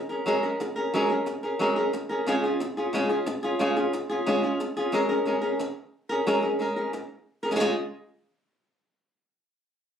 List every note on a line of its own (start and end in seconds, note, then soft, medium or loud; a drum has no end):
0.09 0.26 C#4 soft
0.09 0.26 G#4 soft
0.09 0.26 A#4 medium
0.26 0.43 F#3 medium
0.26 0.43 G#3 medium
0.26 0.43 C#4 medium
0.26 0.43 G#4 medium
0.26 0.42 A#4 medium
0.43 0.60 C#4 soft
0.43 0.60 G#4 medium
0.43 0.59 A#4 medium
0.60 muted nylon-string guitar stroke medium
0.76 0.94 C#4 soft
0.76 0.93 G#4 medium
0.76 0.93 A#4 medium
0.94 1.10 F#3 medium
0.94 1.10 G#3 medium
0.94 1.10 C#4 medium
0.94 1.10 G#4 medium
0.94 1.08 A#4 medium
1.10 1.26 C#4 soft
1.10 1.26 G#4 medium
1.10 1.26 A#4 medium
1.26 muted nylon-string guitar stroke medium
1.43 1.59 C#4 soft
1.43 1.60 G#4 soft
1.43 1.60 A#4 medium
1.59 1.76 F#3 medium
1.59 1.76 G#3 medium
1.59 1.77 C#4 medium
1.59 1.76 G#4 medium
1.59 1.75 A#4 medium
1.76 1.93 C#4 soft
1.76 1.93 G#4 medium
1.76 1.93 A#4 medium
1.93 muted nylon-string guitar stroke medium
2.09 2.26 C#4 soft
2.09 2.27 G#4 medium
2.09 2.26 A#4 medium
2.27 2.43 C#3 medium
2.27 2.43 G#3 medium
2.27 2.44 C#4 medium
2.27 2.44 F4 medium
2.27 2.42 G#4 medium
2.44 2.60 C#4 medium
2.44 2.60 F4 soft
2.44 2.60 G#4 medium
2.60 muted nylon-string guitar stroke medium
2.77 2.93 C#4 soft
2.77 2.94 F4 medium
2.77 2.93 G#4 medium
2.93 3.09 C#3 medium
2.93 3.10 G#3 medium
2.93 3.10 C#4 medium
2.93 3.09 F4 medium
2.93 3.08 G#4 loud
3.09 3.26 C#4 soft
3.09 3.26 F4 medium
3.09 3.26 G#4 medium
3.26 muted nylon-string guitar stroke medium
3.43 3.59 C#4 medium
3.43 3.60 F4 medium
3.43 3.59 G#4 medium
3.59 3.76 C#3 medium
3.59 3.76 G#3 medium
3.59 3.76 C#4 medium
3.59 3.76 F4 loud
3.59 3.75 G#4 medium
3.77 3.93 C#4 soft
3.77 3.93 F4 medium
3.77 3.93 G#4 medium
3.93 muted nylon-string guitar stroke medium
4.09 4.26 C#4 soft
4.09 4.27 F4 medium
4.09 4.26 G#4 medium
4.26 4.43 C#3 medium
4.26 4.43 G#3 medium
4.26 4.43 C#4 medium
4.26 4.43 F4 medium
4.26 4.42 G#4 medium
4.43 4.60 C#4 medium
4.43 4.60 F4 medium
4.43 4.59 G#4 medium
4.60 muted nylon-string guitar stroke medium
4.77 4.92 C#4 medium
4.77 4.93 F4 medium
4.77 4.93 G#4 medium
4.92 5.09 F#3 medium
4.92 5.09 G#3 medium
4.92 5.09 C#4 medium
4.92 5.09 G#4 loud
4.92 5.08 A#4 medium
5.09 5.25 C#4 soft
5.09 5.26 G#4 medium
5.09 5.26 A#4 medium
5.25 5.42 G#3 medium
5.25 5.43 C#4 medium
5.25 5.42 G#4 medium
5.25 5.40 A#4 medium
5.42 5.59 C#4 soft
5.42 5.59 G#4 medium
5.42 5.59 A#4 medium
5.59 muted nylon-string guitar stroke medium
6.09 6.27 C#4 medium
6.09 6.26 G#4 medium
6.09 6.26 A#4 medium
6.27 6.43 F#3 medium
6.27 6.43 G#3 medium
6.27 6.43 C#4 medium
6.27 6.43 G#4 loud
6.27 6.41 A#4 medium
6.43 6.58 C#4 soft
6.43 6.59 G#4 medium
6.43 6.59 A#4 medium
6.59 6.75 G#3 medium
6.59 6.76 C#4 medium
6.59 6.76 G#4 medium
6.59 6.75 A#4 medium
6.76 6.93 C#4 soft
6.76 6.93 G#4 medium
6.76 6.92 A#4 medium
6.93 muted nylon-string guitar stroke medium
7.43 7.50 C#4 soft
7.43 7.51 G#4 medium
7.43 7.52 A#4 medium
7.51 7.55 G#3 medium
7.51 7.55 C#4 medium
7.51 7.55 F4 medium
7.51 7.56 G#4 medium
7.56 7.59 G#3 medium
7.56 7.59 C#4 medium
7.56 7.60 F4 medium
7.56 7.60 G#4 medium
7.60 7.73 C#3 medium
7.60 7.73 G#3 medium
7.60 7.73 C#4 medium
7.60 7.74 F4 medium
7.60 7.74 G#4 loud